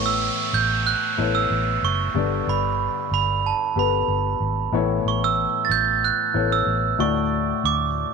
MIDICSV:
0, 0, Header, 1, 5, 480
1, 0, Start_track
1, 0, Tempo, 645717
1, 1599, Time_signature, 4, 2, 24, 8
1, 6049, End_track
2, 0, Start_track
2, 0, Title_t, "Glockenspiel"
2, 0, Program_c, 0, 9
2, 42, Note_on_c, 0, 88, 81
2, 404, Note_on_c, 0, 91, 86
2, 412, Note_off_c, 0, 88, 0
2, 625, Note_off_c, 0, 91, 0
2, 644, Note_on_c, 0, 90, 72
2, 1002, Note_on_c, 0, 88, 82
2, 1012, Note_off_c, 0, 90, 0
2, 1371, Note_off_c, 0, 88, 0
2, 1372, Note_on_c, 0, 85, 80
2, 1853, Note_on_c, 0, 83, 69
2, 1860, Note_off_c, 0, 85, 0
2, 2297, Note_off_c, 0, 83, 0
2, 2332, Note_on_c, 0, 83, 73
2, 2573, Note_off_c, 0, 83, 0
2, 2575, Note_on_c, 0, 81, 67
2, 2814, Note_off_c, 0, 81, 0
2, 2818, Note_on_c, 0, 83, 68
2, 3259, Note_off_c, 0, 83, 0
2, 3776, Note_on_c, 0, 85, 69
2, 3891, Note_off_c, 0, 85, 0
2, 3897, Note_on_c, 0, 88, 84
2, 4198, Note_on_c, 0, 93, 64
2, 4205, Note_off_c, 0, 88, 0
2, 4245, Note_off_c, 0, 93, 0
2, 4248, Note_on_c, 0, 91, 82
2, 4354, Note_off_c, 0, 91, 0
2, 4493, Note_on_c, 0, 90, 73
2, 4822, Note_off_c, 0, 90, 0
2, 4850, Note_on_c, 0, 88, 79
2, 5206, Note_on_c, 0, 85, 83
2, 5216, Note_off_c, 0, 88, 0
2, 5653, Note_off_c, 0, 85, 0
2, 5690, Note_on_c, 0, 86, 69
2, 6049, Note_off_c, 0, 86, 0
2, 6049, End_track
3, 0, Start_track
3, 0, Title_t, "Grand piano"
3, 0, Program_c, 1, 0
3, 0, Control_c, 1, 64, 127
3, 0, Note_on_c, 1, 45, 58
3, 0, Note_on_c, 1, 52, 56
3, 0, Note_on_c, 1, 59, 63
3, 0, Note_on_c, 1, 64, 62
3, 0, Note_on_c, 1, 69, 64
3, 0, Note_on_c, 1, 73, 71
3, 370, Note_off_c, 1, 45, 0
3, 370, Note_off_c, 1, 52, 0
3, 582, Note_off_c, 1, 59, 0
3, 584, Note_off_c, 1, 64, 0
3, 586, Note_off_c, 1, 69, 0
3, 588, Note_off_c, 1, 73, 0
3, 872, Note_on_c, 1, 59, 60
3, 877, Note_on_c, 1, 64, 52
3, 881, Note_on_c, 1, 69, 48
3, 886, Note_on_c, 1, 73, 59
3, 1555, Note_off_c, 1, 59, 0
3, 1558, Note_off_c, 1, 64, 0
3, 1559, Note_off_c, 1, 69, 0
3, 1562, Note_off_c, 1, 73, 0
3, 1592, Note_on_c, 1, 59, 55
3, 1596, Note_on_c, 1, 67, 53
3, 1599, Note_on_c, 1, 50, 54
3, 1600, Note_on_c, 1, 43, 52
3, 1601, Note_on_c, 1, 69, 51
3, 1607, Note_on_c, 1, 74, 67
3, 1609, Control_c, 1, 64, 0
3, 1719, Control_c, 1, 64, 127
3, 2289, Note_off_c, 1, 50, 0
3, 2290, Note_off_c, 1, 43, 0
3, 2501, Note_off_c, 1, 59, 0
3, 2503, Note_off_c, 1, 67, 0
3, 2506, Note_off_c, 1, 69, 0
3, 2509, Note_off_c, 1, 74, 0
3, 2792, Note_on_c, 1, 59, 57
3, 2798, Note_on_c, 1, 67, 51
3, 2803, Note_on_c, 1, 69, 56
3, 2806, Note_on_c, 1, 71, 62
3, 3475, Note_off_c, 1, 59, 0
3, 3478, Note_off_c, 1, 67, 0
3, 3480, Note_off_c, 1, 69, 0
3, 3482, Note_off_c, 1, 71, 0
3, 3512, Note_on_c, 1, 59, 71
3, 3516, Note_on_c, 1, 64, 68
3, 3517, Note_on_c, 1, 45, 60
3, 3519, Note_on_c, 1, 52, 64
3, 3521, Note_on_c, 1, 69, 59
3, 3526, Note_on_c, 1, 73, 80
3, 3530, Control_c, 1, 64, 0
3, 3671, Control_c, 1, 64, 127
3, 4209, Note_off_c, 1, 45, 0
3, 4210, Note_off_c, 1, 52, 0
3, 4421, Note_off_c, 1, 59, 0
3, 4423, Note_off_c, 1, 64, 0
3, 4426, Note_off_c, 1, 69, 0
3, 4429, Note_off_c, 1, 73, 0
3, 4711, Note_on_c, 1, 59, 54
3, 4714, Note_on_c, 1, 64, 54
3, 4720, Note_on_c, 1, 69, 55
3, 4726, Note_on_c, 1, 73, 65
3, 5184, Note_off_c, 1, 64, 0
3, 5191, Note_on_c, 1, 57, 65
3, 5195, Note_off_c, 1, 59, 0
3, 5195, Note_on_c, 1, 64, 60
3, 5198, Note_on_c, 1, 45, 49
3, 5200, Note_off_c, 1, 69, 0
3, 5200, Note_on_c, 1, 66, 58
3, 5203, Note_off_c, 1, 73, 0
3, 5204, Note_on_c, 1, 74, 75
3, 5210, Control_c, 1, 64, 0
3, 5350, Control_c, 1, 64, 127
3, 5889, Note_off_c, 1, 45, 0
3, 6049, Note_off_c, 1, 57, 0
3, 6049, Note_off_c, 1, 64, 0
3, 6049, Note_off_c, 1, 66, 0
3, 6049, Note_off_c, 1, 74, 0
3, 6049, End_track
4, 0, Start_track
4, 0, Title_t, "Fingered electric bass"
4, 0, Program_c, 2, 33
4, 0, Note_on_c, 2, 33, 74
4, 214, Note_off_c, 2, 33, 0
4, 397, Note_on_c, 2, 33, 77
4, 693, Note_off_c, 2, 33, 0
4, 880, Note_on_c, 2, 33, 79
4, 1077, Note_off_c, 2, 33, 0
4, 1118, Note_on_c, 2, 33, 78
4, 1315, Note_off_c, 2, 33, 0
4, 1357, Note_on_c, 2, 30, 75
4, 1555, Note_off_c, 2, 30, 0
4, 1595, Note_on_c, 2, 31, 82
4, 1793, Note_off_c, 2, 31, 0
4, 1837, Note_on_c, 2, 31, 82
4, 2133, Note_off_c, 2, 31, 0
4, 2315, Note_on_c, 2, 31, 81
4, 2612, Note_off_c, 2, 31, 0
4, 2794, Note_on_c, 2, 31, 77
4, 2993, Note_off_c, 2, 31, 0
4, 3033, Note_on_c, 2, 31, 75
4, 3232, Note_off_c, 2, 31, 0
4, 3273, Note_on_c, 2, 32, 71
4, 3473, Note_off_c, 2, 32, 0
4, 3511, Note_on_c, 2, 33, 83
4, 3711, Note_off_c, 2, 33, 0
4, 3752, Note_on_c, 2, 33, 83
4, 4050, Note_off_c, 2, 33, 0
4, 4232, Note_on_c, 2, 33, 87
4, 4530, Note_off_c, 2, 33, 0
4, 4718, Note_on_c, 2, 33, 89
4, 4915, Note_off_c, 2, 33, 0
4, 4956, Note_on_c, 2, 33, 80
4, 5154, Note_off_c, 2, 33, 0
4, 5194, Note_on_c, 2, 38, 76
4, 5590, Note_off_c, 2, 38, 0
4, 5677, Note_on_c, 2, 38, 76
4, 5974, Note_off_c, 2, 38, 0
4, 6049, End_track
5, 0, Start_track
5, 0, Title_t, "Downlifter"
5, 0, Program_c, 3, 103
5, 0, Note_on_c, 3, 60, 57
5, 3518, Note_off_c, 3, 60, 0
5, 6049, End_track
0, 0, End_of_file